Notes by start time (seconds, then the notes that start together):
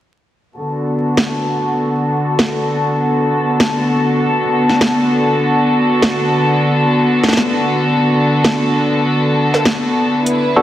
0.57 D3 B3 F#4 A4
1.17 snare
2.39 snare
3.60 snare
4.69 snare
4.81 snare
6.02 snare
7.23 snare
7.28 snare
7.33 snare
7.37 snare
8.45 snare
9.54 snare
9.65 snare
10.26 E4 B4, closed hi-hat
10.56 B3 D4 F#4 A4